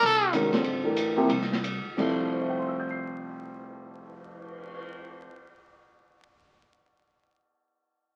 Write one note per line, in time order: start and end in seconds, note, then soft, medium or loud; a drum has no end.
0.03 0.50 C2 medium
0.03 0.33 A4 medium
0.03 ride medium
0.33 0.51 D#3 medium
0.33 0.51 G#3 medium
0.33 0.51 C#4 medium
0.33 0.52 F#4 medium
0.33 0.52 A#4 medium
0.33 hi-hat pedal medium
0.33 ride medium
0.52 0.63 F#2 medium
0.52 0.81 D3 medium
0.52 0.81 G3 medium
0.52 0.80 C4 medium
0.52 0.81 F4 soft
0.52 0.81 A4 medium
0.52 snare soft
0.52 ride soft
0.64 1.13 A1 medium
0.64 ride medium
0.84 1.15 E3 soft
0.84 1.15 A3 soft
0.84 1.15 D4 soft
0.84 1.15 G4 soft
0.84 1.15 A#4 medium
0.96 hi-hat pedal soft
0.96 ride medium
1.16 1.28 C3 medium
1.16 1.28 F3 medium
1.16 1.28 A#3 medium
1.16 1.29 E4 medium
1.16 1.29 G4 medium
1.16 muted upright bass stroke soft
1.29 1.81 C2 medium
1.29 ride medium
1.42 snare soft
1.52 snare soft
1.64 hi-hat pedal medium
1.64 ride medium
1.85 muted upright bass stroke soft
1.97 5.24 F1 medium
1.97 5.27 F2 medium
1.97 5.27 F3 medium
1.97 5.28 G3 medium
1.97 5.29 E4 medium
1.97 5.30 A4 medium
1.97 kick soft
1.97 crash soft
2.21 cymbal swell soft
2.34 5.60 C5 soft
2.41 5.67 E5 soft
2.49 5.76 G5 soft
2.59 5.85 C6 soft
2.68 5.95 E6 soft
2.80 6.06 G6 soft
2.91 6.17 C7 soft